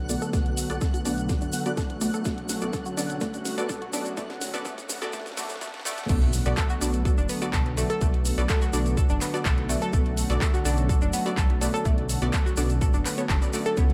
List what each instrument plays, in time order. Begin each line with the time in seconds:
Already playing: detuned saw bass B1, analog synth pad D3 F#3 A3 B3 F#4, synth texture F#5, riser
0.09 synth arpeggio sound A3, synth pluck B3 F#4 A4 D5, open hi-hat, shaker
0.22 synth arpeggio sound A4, closed hi-hat, shaker
0.33 detuned saw bass B1, synth arpeggio sound A3, synth pluck B3 F#4 A4 D5, kick, snare, closed hi-hat, shaker
0.46 closed hi-hat
0.57 open hi-hat, shaker
0.70 detuned saw bass B1, synth pluck B3 F#4 A4 D5, closed hi-hat, shaker
0.81 synth arpeggio sound A4, kick, snare, closed hi-hat, shaker
0.94 synth arpeggio sound F#4, closed hi-hat, shaker
1.05 detuned saw bass B1, synth pluck B3 F#4 A4 D5, synth arpeggio sound D4, open hi-hat, shaker
1.18 closed hi-hat, shaker
1.29 synth pluck B3 F#4 A4 D5, synth arpeggio sound A4, kick, snare, closed hi-hat, shaker
1.41 detuned saw bass F#1, synth arpeggio sound D4, closed hi-hat, shaker
1.53 synth arpeggio sound B3, open hi-hat, shaker
1.66 synth pluck B3 F#4 A4 D5, closed hi-hat, shaker
1.77 detuned saw bass B1, synth arpeggio sound A4, kick, snare, closed hi-hat, shaker
1.90 closed hi-hat
2.01 synth arpeggio sound A3, synth pluck B3 F#4 A4 D5, open hi-hat, shaker
2.14 synth arpeggio sound A4, closed hi-hat, shaker
2.25 detuned saw bass B1, synth arpeggio sound A3, synth pluck B3 F#4 A4 D5, analog synth pad C#4, kick, snare, closed hi-hat, shaker
2.38 closed hi-hat
2.49 snare, open hi-hat, shaker
2.61 detuned saw bass B1, synth pluck B3 F#4 A4 D5, closed hi-hat, shaker
2.73 synth arpeggio sound A4, kick, snare, closed hi-hat, shaker
2.85 synth arpeggio sound F#4, closed hi-hat, shaker
2.97 detuned saw bass B1, synth pluck B3 F#4 A4 D5, synth arpeggio sound D4, snare, open hi-hat, shaker
3.10 closed hi-hat, shaker
3.21 synth arpeggio sound A3, synth pluck B3 F#4 A4 D5, kick, snare, closed hi-hat, shaker
3.34 detuned saw bass F#1, closed hi-hat, shaker
3.45 snare, open hi-hat, shaker
3.58 synth pluck B3 F#4 A4 D5, closed hi-hat, shaker
3.69 detuned saw bass B1, synth arpeggio sound A4, kick, snare, closed hi-hat, shaker
3.82 synth arpeggio sound F#4, closed hi-hat
3.93 synth pluck B3 F#4 A4 D5, synth arpeggio sound D4, snare, open hi-hat, shaker
4.06 closed hi-hat, shaker
4.17 detuned saw bass B1, synth arpeggio sound A3, synth pluck B3 F#4 A4 D5, kick, snare, closed hi-hat, shaker
4.30 snare, closed hi-hat
4.41 snare, open hi-hat, shaker
4.54 detuned saw bass B1, synth pluck B3 F#4 A4 D5, snare, closed hi-hat, shaker
4.65 synth arpeggio sound A3, synth pluck B3 F#4 A4 D5, kick, snare, closed hi-hat, shaker
4.78 snare, closed hi-hat, shaker
4.89 detuned saw bass B1, snare, open hi-hat, shaker
5.02 synth pluck B3 F#4 A4 D5, snare, closed hi-hat, shaker
5.13 synth arpeggio sound A3, synth pluck B3 F#4 A4 D5, kick, snare, closed hi-hat, shaker
5.20 snare
5.26 detuned saw bass F#1, snare, closed hi-hat, shaker
5.32 snare
5.37 synth arpeggio sound A3, synth pluck B3 F#4 A4 D5, snare, open hi-hat, shaker
5.44 snare
5.49 snare, closed hi-hat, shaker
5.56 snare
5.61 detuned saw bass F#1, synth arpeggio sound A3, synth pluck B3 F#4 A4 D5, kick, snare, closed hi-hat, shaker
5.68 snare
5.74 snare, closed hi-hat
5.80 snare
5.85 synth arpeggio sound A3, synth pluck B3 F#4 A4 D5, snare, open hi-hat, shaker
5.92 snare
5.97 snare, closed hi-hat, shaker
6.04 snare
6.09 detuned saw bass B1, analog synth pad D3 F#3 A3 B3 F#4, synth arpeggio sound A3, synth pluck B3 F#4 A4 D5, kick, closed hi-hat, crash, impact, shaker
6.22 closed hi-hat
6.33 open hi-hat, shaker
6.45 detuned saw bass B1, synth pluck B3 F#4 A4 D5, closed hi-hat, shaker
6.57 synth arpeggio sound A4, kick, clap, closed hi-hat, shaker
6.70 synth arpeggio sound F#4, shaker
6.81 detuned saw bass B1, synth pluck B3 F#4 A4 D5, synth arpeggio sound D4, open hi-hat, shaker
6.93 closed hi-hat, shaker
7.05 synth pluck B3 F#4 A4 D5, synth arpeggio sound A4, kick, closed hi-hat, shaker
7.18 detuned saw bass F#1, synth arpeggio sound D4, shaker
7.29 synth arpeggio sound B3, open hi-hat, shaker
7.42 synth pluck B3 F#4 A4 D5, closed hi-hat, shaker
7.53 detuned saw bass B1, synth arpeggio sound A4, kick, clap, closed hi-hat, shaker
7.66 closed hi-hat
7.77 synth arpeggio sound A3, synth pluck B3 F#4 A4 D5, open hi-hat, shaker
7.90 synth arpeggio sound A4, closed hi-hat, shaker
8.01 detuned saw bass B1, synth arpeggio sound A3, synth pluck B3 F#4 A4 D5, kick, closed hi-hat, shaker
8.14 closed hi-hat
8.25 open hi-hat, shaker
8.38 detuned saw bass B1, synth pluck B3 F#4 A4 D5, closed hi-hat, shaker
8.49 synth arpeggio sound A4, kick, clap, closed hi-hat, shaker
8.62 synth arpeggio sound F#4, shaker
8.73 detuned saw bass B1, synth pluck B3 F#4 A4 D5, synth arpeggio sound D4, open hi-hat, shaker
8.86 closed hi-hat, shaker
8.97 synth pluck B3 F#4 A4 D5, synth arpeggio sound A4, kick, closed hi-hat, shaker
9.09 detuned saw bass F#1, synth arpeggio sound D4, shaker
9.21 synth arpeggio sound B3, clap, open hi-hat, shaker
9.34 synth pluck B3 F#4 A4 D5, closed hi-hat, shaker
9.45 detuned saw bass B1, synth arpeggio sound A4, kick, clap, closed hi-hat, shaker
9.58 closed hi-hat
9.69 synth arpeggio sound A3, synth pluck B3 F#4 A4 D5, open hi-hat, shaker
9.82 synth arpeggio sound A4, closed hi-hat, shaker
9.93 detuned saw bass B1, synth arpeggio sound A3, synth pluck B3 F#4 A4 D5, analog synth pad C#4, kick, closed hi-hat, shaker
10.06 closed hi-hat
10.17 open hi-hat, shaker
10.30 detuned saw bass B1, synth pluck B3 F#4 A4 D5, closed hi-hat, shaker
10.41 synth arpeggio sound A4, kick, clap, closed hi-hat, shaker
10.54 synth arpeggio sound F#4, shaker
10.65 detuned saw bass B1, synth pluck B3 F#4 A4 D5, synth arpeggio sound D4, open hi-hat, shaker
10.77 closed hi-hat, shaker
10.89 synth pluck B3 F#4 A4 D5, synth arpeggio sound A4, kick, closed hi-hat, shaker
11.02 detuned saw bass F#1, synth arpeggio sound D4, shaker
11.13 synth arpeggio sound B3, open hi-hat, shaker
11.26 synth pluck B3 F#4 A4 D5, closed hi-hat, shaker
11.37 detuned saw bass B1, synth arpeggio sound A4, kick, clap, closed hi-hat, shaker
11.50 closed hi-hat
11.61 synth arpeggio sound A3, synth pluck B3 F#4 A4 D5, open hi-hat, shaker
11.74 synth arpeggio sound A4, closed hi-hat, shaker
11.85 detuned saw bass B1, synth arpeggio sound A3, synth pluck B3 F#4 A4 D5, kick, closed hi-hat, shaker
11.98 closed hi-hat
12.09 open hi-hat, shaker
12.22 detuned saw bass B1, synth pluck B3 F#4 A4 D5, closed hi-hat, shaker
12.33 synth arpeggio sound A4, kick, clap, closed hi-hat, shaker
12.46 synth arpeggio sound F#4, shaker
12.57 detuned saw bass B1, synth pluck B3 F#4 A4 D5, synth arpeggio sound D4, open hi-hat, shaker
12.69 closed hi-hat, shaker
12.81 synth pluck B3 F#4 A4 D5, synth arpeggio sound A4, kick, closed hi-hat, shaker
12.94 detuned saw bass F#1, synth arpeggio sound D4, shaker
13.05 synth arpeggio sound B3, clap, open hi-hat, shaker
13.18 synth pluck B3 F#4 A4 C#5, shaker
13.29 detuned saw bass F#1, synth arpeggio sound A4, kick, clap, closed hi-hat, shaker
13.42 synth pluck B3 F#4 A4 D5, closed hi-hat, shaker
13.53 synth arpeggio sound A3, synth pluck B3 F#4 A4 D5, open hi-hat, shaker
13.66 synth arpeggio sound A4, closed hi-hat, shaker
13.77 detuned saw bass C#2, analog synth pad E3 G3 B3 G4, synth arpeggio sound B3, synth pluck B3 E4 G4 C#5, kick, closed hi-hat, shaker
13.90 closed hi-hat